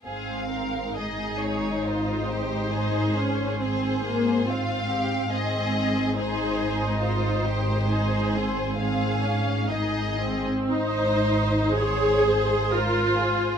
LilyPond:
<<
  \new Staff \with { instrumentName = "Violin section" } { \time 3/4 \key aes \major \tempo 4 = 68 f''4 ees''8 des''8 c''4~ | c''4 c''4 f''4 | ees''4 c''4 c''4~ | c''4 f''4 ees''4 |
c''4 c''2 | }
  \new Staff \with { instrumentName = "Violin section" } { \time 3/4 \key aes \major aes'8 bes'8 aes'4 f'8 g'8 | aes'4 aes'4 f'8 g'8 | aes'4 aes'4 f'8 g'8 | aes'4 aes'4 aes'4 |
c''4 des''8 c''8 bes'8 aes'8 | }
  \new Staff \with { instrumentName = "Viola section" } { \time 3/4 \key aes \major c'4 ees'2 | ees'8 des'8 c'8 bes8 c'4 | c'4 ees'2 | ees'8 c'8 c'8 des'8 ees'8 c'8 |
ees'4 aes'4 f'4 | }
  \new Staff \with { instrumentName = "Cello section" } { \clef bass \time 3/4 \key aes \major aes,2.~ | aes,2. | aes,2.~ | aes,2. |
aes,2. | }
  \new Staff \with { instrumentName = "Double bass section" } { \clef bass \time 3/4 \key aes \major aes,,2.~ | aes,,2. | aes,,2.~ | aes,,2. |
aes,,2. | }
>>